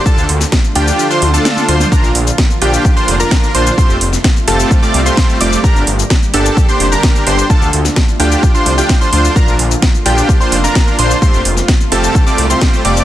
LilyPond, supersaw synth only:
\new Staff \with { instrumentName = "Supersaw synth" } { \time 4/4 \key f \major \tempo 4 = 129 <d' f' a'>8 r4 <d' f' g'>8. <d' f' c''>8 <d' f' a'>8. <d' f' c''>8 | <d' f' bes'>8 r4 <d' f' g'>8. <d' f' c''>8 <d' f' bes'>8. <d' f' c''>8 | <a c' f' g' c''>8 r4 <a c' f' g' a'>8. <a c' f' g' d''>8 <a c' f' g' c''>8. <a c' f' g' d''>8 | <d' g' bes'>8 r4 <d' g' a'>8. <d' g' c''>8 <d' g' bes'>8. <d' g' c''>8 |
<d' f' a'>8 r4 <d' f' g'>8. <d' f' c''>8 <d' f' g'>8 <d' f' c''>16 <d' f' c''>8 | <d' f' bes'>8 r4 <d' f' g'>8. <d' f' c''>8 <d' f' bes'>8. <d' f' c''>8 | <a c' f' g' c''>8 r4 <a c' f' g' a'>8. <a c' f' g' d''>8 <a c' f' g' c''>8. <a c' f' g' d''>8 | }